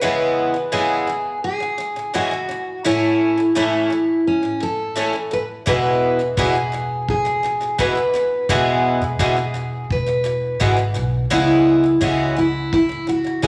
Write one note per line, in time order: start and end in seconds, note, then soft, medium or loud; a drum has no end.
0.01 0.53 C#3 medium
0.01 0.55 E3 medium
0.01 0.55 G#3 medium
0.01 0.55 B3 medium
0.01 0.56 E4 medium
0.01 0.73 B4 medium
0.54 0.71 C#3 soft
0.54 0.71 E3 soft
0.72 1.06 C#3 medium
0.72 1.08 E3 medium
0.72 1.08 G#3 medium
0.72 1.08 B3 medium
0.72 1.08 E4 medium
0.72 1.40 G#4 medium
1.07 1.36 C#3 soft
1.07 1.37 E3 medium
1.44 2.15 G#4 medium
1.60 1.77 C#3 soft
1.60 1.79 E3 soft
1.78 1.95 C#3 medium
1.78 1.97 E3 medium
1.96 2.12 C#3 soft
1.96 2.13 E3 soft
2.14 2.30 C#3 medium
2.14 2.32 E3 medium
2.14 2.32 G#3 medium
2.14 2.32 B3 medium
2.14 2.32 E4 medium
2.14 2.87 F#4 medium
2.31 2.47 C#3 soft
2.31 2.50 E3 soft
2.49 2.77 C#3 soft
2.49 2.78 E3 medium
2.85 3.36 A2 medium
2.85 3.38 E3 medium
2.85 3.38 A3 medium
2.85 3.38 C#4 medium
2.85 3.52 E4 medium
2.85 3.38 E4 medium
3.37 3.54 A2 soft
3.37 3.54 E3 soft
3.55 3.89 A2 medium
3.55 3.91 E3 medium
3.55 3.91 A3 medium
3.55 3.91 C#4 medium
3.55 4.27 E4 medium
3.55 3.91 E4 medium
3.90 4.19 A2 soft
3.90 4.20 E3 medium
4.27 4.63 C#4 medium
4.43 4.59 A2 soft
4.43 4.62 E3 soft
4.60 4.89 A2 medium
4.60 4.90 E3 medium
4.60 5.33 A4 medium
4.96 5.12 A2 medium
4.96 5.14 E3 medium
4.96 5.14 A3 medium
4.96 5.14 C#4 medium
4.96 5.15 E4 medium
5.13 5.30 A2 soft
5.13 5.32 E3 soft
5.31 5.60 A2 soft
5.31 5.61 E3 medium
5.31 5.43 B4 medium
5.66 6.34 E1 medium
5.66 6.18 E2 medium
5.66 6.19 B2 medium
5.66 6.20 E3 medium
5.66 6.20 G#3 medium
5.66 6.20 B3 medium
5.66 6.20 E4 medium
5.66 6.39 B4 medium
5.66 kick medium
6.19 6.36 E2 soft
6.19 6.36 B2 soft
6.19 6.37 E3 soft
6.37 8.10 E1 medium
6.37 6.54 E2 medium
6.37 6.55 B2 medium
6.37 6.55 E3 medium
6.37 6.56 G#3 medium
6.37 6.56 B3 medium
6.37 6.56 E4 medium
6.37 7.09 G#4 medium
6.37 kick loud
6.55 6.71 E2 soft
6.55 6.72 B2 soft
6.72 7.01 E2 soft
6.72 7.01 B2 soft
6.72 7.02 E3 medium
7.09 7.80 G#4 medium
7.09 kick medium
7.25 7.42 E2 soft
7.25 7.43 B2 soft
7.25 7.44 E3 soft
7.43 7.59 E2 soft
7.43 7.61 B2 medium
7.43 7.62 E3 medium
7.61 7.77 E2 soft
7.61 7.77 B2 soft
7.61 7.78 E3 soft
7.78 7.94 E2 medium
7.78 7.96 B2 medium
7.78 7.96 E3 medium
7.78 7.97 G#3 medium
7.78 7.97 B3 medium
7.78 7.97 E4 medium
7.78 8.51 B4 medium
7.78 kick medium
7.95 8.12 E2 soft
7.95 8.14 B2 soft
7.95 8.15 E3 soft
8.14 8.42 E2 medium
8.14 8.43 B2 medium
8.14 8.43 E3 medium
8.49 8.98 E1 medium
8.49 9.00 E2 medium
8.49 9.02 B2 medium
8.49 9.02 E3 medium
8.49 9.02 G#3 medium
8.49 9.03 B3 medium
8.49 9.03 E4 medium
8.49 9.20 G#4 medium
8.49 kick medium
9.02 9.18 E1 medium
9.02 9.18 E2 soft
9.02 9.19 B2 soft
9.02 9.19 E3 soft
9.19 9.86 E1 medium
9.19 9.35 E2 medium
9.19 9.36 B2 medium
9.19 9.38 E3 medium
9.19 9.38 G#3 medium
9.19 9.38 B3 medium
9.19 9.38 E4 medium
9.19 9.92 G#4 medium
9.19 kick medium
9.37 9.53 E2 soft
9.37 9.54 B2 soft
9.54 9.83 E2 soft
9.54 9.83 B2 medium
9.54 9.84 E3 soft
9.90 10.57 E1 medium
9.90 10.93 B4 medium
9.90 kick medium
10.06 10.23 E2 soft
10.06 10.24 B2 soft
10.06 10.25 E3 soft
10.24 10.53 E2 medium
10.24 10.54 B2 medium
10.24 10.54 E3 medium
10.60 10.93 G#1 medium
10.60 10.75 E2 medium
10.60 10.77 B2 medium
10.60 10.78 E3 medium
10.60 10.78 G#3 medium
10.60 10.79 B3 medium
10.60 10.79 E4 medium
10.60 kick medium
10.77 10.93 E2 soft
10.77 10.94 B2 soft
10.77 10.95 E3 soft
10.94 11.28 B1 medium
10.94 11.23 E2 medium
10.94 11.24 B2 medium
10.94 11.24 E3 medium
11.30 11.98 C#2 medium
11.30 11.82 C#3 medium
11.30 11.84 E3 medium
11.30 11.84 G#3 medium
11.30 11.84 B3 medium
11.30 11.85 E4 medium
11.30 12.05 E4 medium
11.30 kick medium
11.84 11.99 C#3 soft
11.84 12.00 E3 soft
12.01 13.47 C#2 medium
12.01 12.35 C#3 medium
12.01 12.37 E3 medium
12.01 12.37 G#3 medium
12.01 12.37 B3 medium
12.01 12.38 E4 medium
12.01 12.38 F#4 medium
12.01 kick loud
12.36 12.65 C#3 medium
12.36 12.66 E3 soft
12.36 12.72 E4 medium
12.73 13.08 E4 loud
12.73 kick loud
12.89 13.06 C#3 soft
12.89 13.08 E3 soft
13.07 13.23 C#3 soft
13.07 13.25 E3 medium
13.07 13.43 F#4 medium
13.24 13.41 C#3 soft
13.24 13.42 E3 soft
13.42 13.47 C#3 medium
13.42 13.47 E3 medium
13.42 13.47 G#3 medium
13.42 13.47 B3 medium
13.42 13.47 E4 medium
13.42 13.47 G#4 medium
13.42 kick medium